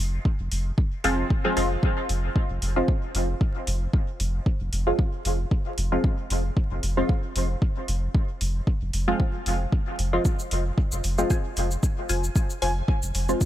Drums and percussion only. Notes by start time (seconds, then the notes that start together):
0.25 kick
0.52 open hi-hat
0.78 kick
1.04 open hi-hat
1.30 kick
1.57 open hi-hat
1.83 kick
2.09 open hi-hat
2.36 kick
2.62 open hi-hat
2.88 kick
3.15 open hi-hat
3.41 kick
3.67 open hi-hat
3.93 kick
4.20 open hi-hat
4.46 kick
4.73 open hi-hat
4.99 kick
5.25 open hi-hat
5.51 kick
5.78 open hi-hat
6.04 kick
6.30 open hi-hat
6.57 kick
6.83 open hi-hat
7.09 kick
7.36 open hi-hat
7.62 kick
7.88 open hi-hat
8.14 kick
8.41 open hi-hat
8.67 kick
8.93 open hi-hat
9.20 kick
9.46 open hi-hat
9.72 kick
9.99 open hi-hat
10.25 kick, cabasa
10.39 cabasa
10.51 open hi-hat
10.78 kick
10.92 cabasa
11.04 open hi-hat, cabasa
11.18 cabasa
11.30 kick, cabasa
11.57 open hi-hat, cabasa
11.71 cabasa
11.83 kick, cabasa
12.09 open hi-hat, cabasa
12.24 cabasa
12.36 kick, cabasa
12.50 cabasa
12.62 open hi-hat
12.88 kick
13.03 cabasa
13.15 open hi-hat, cabasa
13.29 cabasa
13.41 kick, cabasa